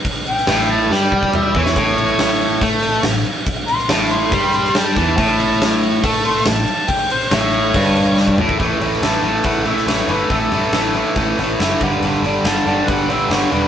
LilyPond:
<<
  \new Staff \with { instrumentName = "Harmonica" } { \time 4/4 \key a \mixolydian \tempo 4 = 140 r8 g''4 a''8 g''8 g''8 e''8 cis''8~ | cis''2~ cis''8 r4. | r8 c'''8 a''8 c'''4 c'''8 a''4~ | a''2 r8 c'''8 a''4 |
g''8 c''8 cis''2. | r4 a''4 fis''8 e''8 cis''8 b'8 | a'2 r2 | r4 a''4 fis''8 e''8 cis''8 b'8 | }
  \new Staff \with { instrumentName = "Distorted electric guitar" } { \clef bass \time 4/4 \key a \mixolydian r4 a,4 g4. e8 | a,2 a4 a,8 r8 | r4 a,4 g4. e8 | a,2 a4 a,8 r8 |
r4 a,4 g,4. a,8 | <a, e a>8 <a, e a>8 <a, e a>8 <a, e a>8 <a, e a>8 <a, e a>8 <a, e a>8 <a, e a>8 | <a, e a>8 <a, e a>8 <a, e a>8 <a, e a>8 <a, e a>8 <a, e a>8 <a, e a>8 <g, d g>8 | <g, d g>8 <g, d g>8 <g, d g>8 <g, d g>8 <g, d g>8 <g, d g>8 <g, d g>8 <g, d g>8 | }
  \new Staff \with { instrumentName = "Picked electric bass" } { \clef bass \time 4/4 \key a \mixolydian r4 a,,4 g,4. e,8 | a,,2 a,4 a,,8 r8 | r4 a,,4 g,4. e,8 | a,,2 a,4 a,,8 r8 |
r4 a,,4 g,,4. a,,8 | a,,8 a,,8 a,,8 a,,8 a,,4 a,,8 g,,8 | a,,8 g,8 a,,4 a,,8 a,,8 fis,,8 g,,8 | g,,8 g,,8 g,,8 g,,8 g,,4 g,,8 e,,8 | }
  \new DrumStaff \with { instrumentName = "Drums" } \drummode { \time 4/4 <cymc bd>8 cymc16 sn16 <cymc sn>8 cymc8 sn8 bd16 bd16 toml8 bd16 sn16 | <cymc bd>8 cymc8 <cymc sn>8 cymc8 <cymc bd>8 cymc8 <cymc sn>8 cymc8 | <cymc bd>8 cymc16 sn16 <cymc sn>8 cymc8 <cymc bd>8 cymc16 sn16 <cymc sn>8 <cymc bd>8 | <cymc bd>8 cymc16 sn16 <cymc sn>8 cymc8 <cymc bd>8 cymc16 sn16 <cymc sn>8 cymc8 |
<cymc bd>8 cymc16 sn16 <cymc sn>8 cymc8 <cymc bd>8 cymc8 sn16 bd16 toml16 bd16 | <hho bd>8 hho16 sn16 <hho sn>8 hho8 <hho bd>8 hho16 sn16 <hho sn>8 hho8 | <hho bd>8 hho8 <hho sn>8 hho8 <hho bd>8 hho8 <hho sn>8 <hho bd>8 | hho8 hho8 <hho sn>8 hho8 <hho bd>8 hho8 <hho sn>8 hho8 | }
>>